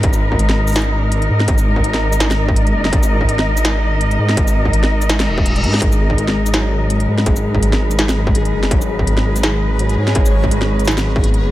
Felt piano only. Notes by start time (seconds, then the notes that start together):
5.82 G#3
6.00 G#4
6.18 G#3
6.54 F#3
6.72 G#3
6.90 G#3
7.08 G#4
7.26 G#3
7.62 F#3
7.81 G#3
7.99 G#3
8.17 G#4
8.35 G#3
8.71 F#3
8.89 G#3
9.07 G#3
9.25 G#4
9.43 G#3
9.79 F#3
9.98 G#3
10.15 G#3
10.34 G#4
10.52 G#3
10.88 F#3
11.06 G#3
11.24 B3